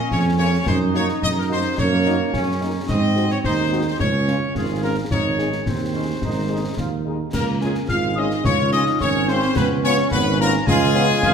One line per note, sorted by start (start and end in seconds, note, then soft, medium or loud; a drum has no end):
0.00 0.67 C#4 medium
0.11 0.57 F2 medium
0.11 0.23 C#5 medium
0.11 concert bass drum medium
0.11 snare medium
0.38 0.49 A#3 medium
0.38 0.49 C#4 medium
0.38 0.49 F4 medium
0.38 0.64 C#5 loud
0.66 1.13 F#2 loud
0.66 1.74 D#4 loud
0.66 0.79 C5 loud
0.66 concert bass drum medium
0.66 snare medium
0.94 1.04 A#3 medium
0.94 1.05 D#4 medium
0.94 1.04 F#4 medium
0.94 1.07 C#5 loud
0.94 snare medium
1.08 snare medium
1.22 1.68 F#2 medium
1.22 1.28 D#5 loud
1.22 concert bass drum medium
1.22 snare medium
1.38 1.44 A#4 medium
1.50 1.60 A#3 medium
1.50 1.60 D#4 medium
1.50 1.60 F#4 medium
1.50 1.76 C5 loud
1.77 2.24 F#2 loud
1.77 2.33 A#3 medium
1.77 2.57 C#5 loud
1.77 concert bass drum medium
1.77 snare medium
2.05 2.16 A#3 medium
2.05 2.15 D#4 medium
2.05 2.16 F#4 medium
2.05 snare medium
2.33 2.79 F#2 medium
2.33 2.85 C#4 loud
2.33 concert bass drum medium
2.33 snare medium
2.61 2.71 A#3 medium
2.61 2.71 D#4 medium
2.61 2.71 F#4 medium
2.89 3.35 G#2 loud
2.89 3.41 C4 medium
2.89 3.28 D#5 loud
2.89 concert bass drum medium
2.89 snare medium
2.89 crash soft
3.16 3.26 G#3 medium
3.16 3.26 C4 medium
3.16 3.26 F#4 medium
3.16 snare medium
3.30 3.37 C#5 loud
3.30 snare medium
3.43 3.91 D#2 medium
3.43 3.97 D#4 medium
3.43 3.83 C5 loud
3.43 concert bass drum medium
3.43 snare medium
3.71 3.82 G#3 medium
3.71 3.82 C4 medium
3.71 3.82 F#4 medium
3.87 3.99 C5 medium
3.99 4.41 C#2 loud
3.99 4.56 C#4 medium
3.99 4.51 C#5 loud
3.99 concert bass drum medium
3.99 snare medium
4.27 4.37 G#3 medium
4.27 4.37 C#4 medium
4.27 4.37 F4 medium
4.27 snare medium
4.55 5.01 G#1 medium
4.55 4.95 F4 medium
4.55 4.83 G#4 medium
4.55 concert bass drum medium
4.55 snare medium
4.82 4.93 G#3 medium
4.82 4.93 C#4 medium
4.82 4.93 F4 medium
4.82 4.95 A#4 medium
5.10 5.57 G#1 medium
5.10 5.57 D#4 medium
5.10 5.62 C#5 loud
5.10 concert bass drum medium
5.10 snare medium
5.38 5.48 G#3 medium
5.38 5.48 D#4 medium
5.38 5.49 G#4 medium
5.38 snare medium
5.52 snare medium
5.66 6.13 D#2 medium
5.66 5.93 C4 medium
5.66 7.06 C5 medium
5.66 concert bass drum medium
5.66 snare medium
5.94 6.04 G#3 medium
5.94 6.07 C#4 medium
5.94 6.04 D#4 medium
5.94 6.04 G#4 medium
6.22 6.68 G#1 medium
6.22 6.49 D#4 medium
6.22 concert bass drum medium
6.22 snare medium
6.49 6.60 G#3 medium
6.49 6.59 D#4 medium
6.49 6.76 D#4 medium
6.49 6.59 G#4 medium
6.77 7.24 D#2 medium
6.77 6.90 F4 medium
6.77 concert bass drum medium
6.77 snare medium
7.05 7.16 G#3 medium
7.05 7.15 D#4 medium
7.05 7.19 D#4 medium
7.05 7.15 G#4 medium
7.32 7.80 C#2 medium
7.32 7.85 A#3 medium
7.32 7.46 A#3 medium
7.32 7.45 A#4 loud
7.32 7.60 A#5 medium
7.32 concert bass drum medium
7.32 snare medium
7.32 crash medium
7.61 7.71 G#3 medium
7.61 7.74 G#3 medium
7.61 7.71 C#4 medium
7.61 7.71 F4 medium
7.61 7.75 G#4 medium
7.61 7.87 G#5 medium
7.61 snare medium
7.75 snare medium
7.88 8.35 G#1 medium
7.88 8.44 G#3 medium
7.88 8.15 F4 loud
7.88 8.15 F5 medium
7.88 7.95 F6 medium
7.88 concert bass drum medium
7.88 snare medium
8.16 8.27 G#3 medium
8.16 8.27 C#4 medium
8.16 8.46 D#4 medium
8.16 8.27 F4 medium
8.16 8.45 D#5 loud
8.16 8.22 D#6 medium
8.31 snare medium
8.44 8.91 C#2 medium
8.44 8.74 C#4 medium
8.44 9.00 F4 medium
8.44 8.70 C#5 loud
8.44 8.71 C#6 loud
8.44 concert bass drum medium
8.44 snare medium
8.72 8.82 G#3 medium
8.72 8.82 C#4 medium
8.72 9.02 D#4 medium
8.72 8.83 F4 medium
8.72 8.85 D#5 loud
8.72 8.99 D#6 medium
8.72 snare medium
8.86 snare medium
9.00 9.46 G#1 medium
9.00 10.63 C#4 loud
9.00 9.28 C#4 loud
9.00 9.26 C#5 loud
9.00 9.07 C#6 medium
9.00 concert bass drum medium
9.00 snare medium
9.28 9.38 G#3 medium
9.28 9.58 C4 medium
9.28 9.38 C#4 medium
9.28 9.38 F4 medium
9.28 9.56 C5 loud
9.28 9.54 C6 medium
9.28 snare medium
9.42 snare medium
9.56 10.02 C#2 loud
9.56 9.83 B3 medium
9.56 9.68 B4 loud
9.56 9.63 B5 loud
9.56 concert bass drum medium
9.56 snare medium
9.56 crash soft
9.83 9.94 B3 medium
9.83 10.10 C#4 loud
9.83 9.94 C#4 medium
9.83 9.94 F4 medium
9.83 9.96 C#5 loud
9.83 10.10 C#6 loud
9.83 snare medium
9.97 snare medium
10.11 10.58 G#1 loud
10.11 10.25 B3 loud
10.11 10.38 B4 loud
10.11 10.37 B5 loud
10.11 concert bass drum medium
10.11 snare medium
10.40 10.52 A#3 loud
10.40 10.50 B3 medium
10.40 10.50 C#4 medium
10.40 10.50 F4 medium
10.40 10.52 A#4 loud
10.40 10.68 A#5 loud
10.53 snare medium
10.66 11.14 C#2 loud
10.66 11.34 G#3 loud
10.66 11.19 F4 loud
10.66 11.34 G#4 loud
10.66 11.34 G#5 loud
10.66 concert bass drum medium
10.66 snare medium
10.95 11.05 B3 loud
10.95 11.05 C#4 medium
10.95 11.05 F4 medium
10.95 snare medium
11.09 snare medium
11.23 11.34 G#1 loud
11.23 11.34 F4 loud
11.23 concert bass drum medium
11.23 snare medium